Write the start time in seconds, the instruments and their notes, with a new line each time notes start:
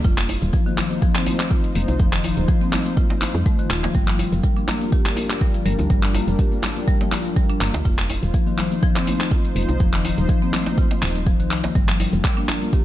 0.04 fm bass F1, analog synth pad D#4 F4 C5, marimba F4, kick, closed hi-hat, shaker
0.18 clap, shaker
0.29 open hi-hat, djembe tone
0.42 fm bass D#1, closed hi-hat, high conga, low conga, shaker
0.53 marimba F3, kick, closed hi-hat, shaker
0.66 marimba D#3, high conga, shaker
0.78 marimba F3, clap, open hi-hat, djembe tone, low conga
0.90 closed hi-hat, high conga, shaker
1.02 marimba F3, kick, closed hi-hat, shaker
1.15 marimba C4, clap, djembe slap, shaker
1.26 marimba A3, open hi-hat, high conga, djembe tone
1.39 clap, closed hi-hat, high conga, shaker
1.51 marimba F4, kick, shaker
1.64 closed hi-hat, shaker
1.75 fm bass F1, open hi-hat, high conga, low conga
1.82 closed hi-hat
1.88 fm bass C2, closed hi-hat, djembe tone, shaker
1.99 fm bass F1, marimba F3, kick, closed hi-hat, shaker
2.13 marimba D#3, clap, shaker
2.24 marimba F3, open hi-hat, djembe tone
2.37 fm bass D#1, closed hi-hat, high conga, low conga, shaker
2.48 marimba F3, kick, closed hi-hat, shaker
2.61 marimba C4, high conga, shaker
2.73 marimba A3, clap, open hi-hat, djembe tone, low conga
2.86 closed hi-hat, high conga, shaker
2.97 marimba F4, kick, closed hi-hat, shaker
3.10 djembe slap, high conga, shaker
3.22 clap, open hi-hat, djembe tone
3.35 fm bass F2, closed hi-hat, low conga, shaker
3.46 marimba A3, kick, shaker
3.59 marimba D#3, closed hi-hat, shaker
3.70 fm bass D#1, marimba F4, clap, open hi-hat
3.77 closed hi-hat
3.83 marimba F3, closed hi-hat, djembe slap, high conga, shaker
3.95 fm bass G1, marimba G3, analog synth pad G3 D4 A#4, kick, closed hi-hat, shaker
4.08 marimba F3, clap, shaker
4.19 marimba G3, open hi-hat, djembe tone
4.32 fm bass F1, closed hi-hat, high conga, low conga, shaker
4.43 marimba G3, kick, closed hi-hat, shaker
4.57 marimba D4, high conga, shaker
4.68 marimba A#3, clap, open hi-hat, djembe tone, low conga
4.81 closed hi-hat, high conga, shaker
4.92 marimba G4, kick, closed hi-hat, shaker
5.05 clap, djembe slap, shaker
5.16 open hi-hat, djembe tone, high conga
5.30 clap, closed hi-hat, high conga, shaker
5.41 marimba G3, kick, shaker
5.54 marimba F3, closed hi-hat, shaker
5.65 fm bass G1, marimba G3, open hi-hat, high conga, low conga
5.72 closed hi-hat
5.79 fm bass D2, closed hi-hat, djembe tone, shaker
5.90 fm bass G1, marimba G3, kick, closed hi-hat, shaker
6.03 marimba D4, clap, shaker
6.14 marimba A#3, open hi-hat, djembe tone
6.27 fm bass F1, closed hi-hat, high conga, low conga, shaker
6.39 marimba G4, kick, closed hi-hat, shaker
6.52 high conga, shaker
6.62 clap, open hi-hat, djembe tone, low conga
6.76 closed hi-hat, high conga, shaker
6.88 marimba G3, kick, closed hi-hat, shaker
7.01 marimba F3, djembe slap, high conga, shaker
7.12 marimba G3, clap, open hi-hat, djembe tone
7.25 closed hi-hat, low conga, shaker
7.36 marimba G3, kick, shaker
7.49 marimba D4, closed hi-hat, shaker
7.61 fm bass G1, marimba A#3, clap, open hi-hat
7.67 closed hi-hat
7.74 fm bass D2, closed hi-hat, djembe slap, high conga, shaker
7.85 fm bass F1, analog synth pad D#4 C5, marimba F4, kick, closed hi-hat, shaker
7.98 clap, shaker
8.10 open hi-hat, djembe tone
8.23 fm bass D#1, closed hi-hat, high conga, low conga, shaker
8.34 marimba F3, kick, closed hi-hat, shaker
8.47 marimba D#3, high conga, shaker
8.58 marimba F3, clap, open hi-hat, djembe tone, low conga
8.71 closed hi-hat, high conga, shaker
8.83 marimba F3, kick, closed hi-hat, shaker
8.96 marimba C4, clap, djembe slap, shaker
9.07 marimba A3, open hi-hat, high conga, djembe tone
9.20 clap, closed hi-hat, high conga, shaker
9.31 marimba F4, kick, shaker
9.45 closed hi-hat, shaker
9.55 fm bass F1, open hi-hat, high conga, low conga
9.63 closed hi-hat
9.68 fm bass C2, closed hi-hat, djembe tone, shaker
9.79 fm bass F1, marimba F3, kick, closed hi-hat, shaker
9.93 marimba D#3, clap, shaker
10.05 marimba F3, open hi-hat, djembe tone
10.17 fm bass D#1, closed hi-hat, high conga, low conga, shaker
10.29 marimba F3, kick, closed hi-hat, shaker
10.42 marimba C4, high conga, shaker
10.53 marimba A3, clap, open hi-hat, djembe tone, low conga
10.66 closed hi-hat, djembe slap, high conga, shaker
10.78 marimba F4, kick, closed hi-hat, shaker
10.91 djembe slap, high conga, shaker
11.02 fm bass D#1, clap, open hi-hat, djembe tone
11.15 closed hi-hat, low conga, shaker
11.27 marimba F3, kick, shaker
11.40 fm bass C2, marimba D#3, closed hi-hat, shaker
11.51 marimba F3, clap, open hi-hat
11.58 closed hi-hat
11.64 closed hi-hat, djembe slap, high conga, shaker
11.75 fm bass G1, marimba G3, analog synth pad G3 D4 F4 A#4, kick, closed hi-hat, shaker
11.88 marimba F3, clap, shaker
12.00 marimba G3, open hi-hat, djembe tone
12.12 fm bass F1, closed hi-hat, high conga, low conga, shaker
12.24 marimba G3, kick, clap, closed hi-hat, shaker
12.37 marimba D4, high conga, shaker
12.48 marimba A#3, clap, open hi-hat, djembe tone, low conga
12.62 closed hi-hat, high conga, shaker
12.73 marimba G4, kick, closed hi-hat, shaker